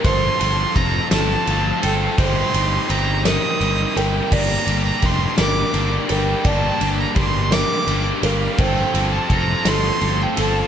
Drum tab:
CC |------|------|x-----|------|
RD |xxxxxx|xxxxxx|-xxxxx|xxxxxx|
SD |---o--|---o--|---o--|---o--|
BD |o-o---|o-----|o-o---|o-o---|

CC |------|
RD |xxxxxx|
SD |---o--|
BD |o-o---|